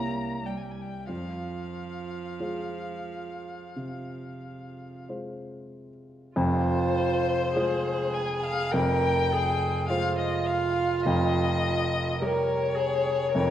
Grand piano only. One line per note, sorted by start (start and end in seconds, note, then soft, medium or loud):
0.00 1.06 C2 soft
0.00 1.06 G3 soft
0.00 1.06 E4 soft
0.00 1.07 C#5 soft
1.09 2.37 F2 soft
2.40 3.71 G#3 soft
2.40 3.71 F4 soft
2.40 3.72 C5 soft
3.76 5.87 C3 soft
5.08 6.33 G#3 soft
5.08 6.33 F4 soft
5.08 6.34 C5 soft
6.36 8.69 F1 medium
6.36 8.69 F2 medium
7.56 8.69 G#3 medium
7.56 8.69 F4 medium
7.56 8.70 C5 medium
8.74 11.01 F1 medium
8.74 11.01 F2 medium
9.89 11.01 G#3 medium
9.89 11.01 F4 medium
9.89 11.02 C5 medium
11.06 13.30 F1 medium
11.06 13.31 F2 medium
12.22 13.30 G3 medium
12.22 13.30 G4 medium
12.22 13.31 A#4 medium
13.35 13.50 F1 medium
13.35 13.50 F2 medium